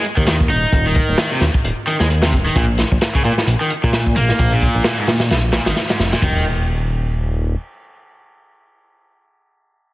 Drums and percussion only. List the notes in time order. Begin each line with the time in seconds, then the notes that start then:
0.04 closed hi-hat
0.17 kick
0.26 snare, closed hi-hat
0.40 kick
0.50 closed hi-hat
0.72 kick, closed hi-hat
0.95 kick, closed hi-hat
1.18 snare, closed hi-hat
1.41 snare, closed hi-hat
1.54 kick
1.64 closed hi-hat
1.87 closed hi-hat
2.00 snare
2.10 closed hi-hat
2.22 snare
2.33 kick, closed hi-hat
2.56 kick, closed hi-hat
2.78 snare, closed hi-hat
2.92 kick
3.01 snare, closed hi-hat
3.15 kick
3.24 closed hi-hat
3.38 snare
3.48 closed hi-hat
3.70 closed hi-hat
3.84 kick
3.93 snare, closed hi-hat
4.07 kick
4.16 closed hi-hat
4.29 snare
4.39 kick, closed hi-hat
4.62 kick, closed hi-hat
4.84 snare, closed hi-hat
5.08 snare, closed hi-hat
5.20 snare, closed hi-hat
5.30 snare, closed hi-hat
5.53 snare, closed hi-hat
5.66 snare, closed hi-hat
5.76 snare, closed hi-hat
5.89 snare, closed hi-hat
5.99 snare, closed hi-hat
6.12 snare, closed hi-hat
6.22 kick, floor tom, ride bell